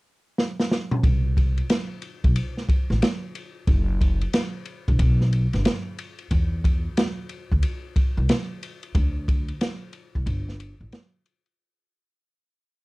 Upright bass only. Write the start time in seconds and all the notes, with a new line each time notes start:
1.03 C2
2.24 B1
2.90 A1
3.67 F#1
4.88 E1
4.99 B1
5.54 G1
6.31 E2
7.52 D2
8.17 C2
8.95 D2
10.15 C2
10.27 G1
10.81 A1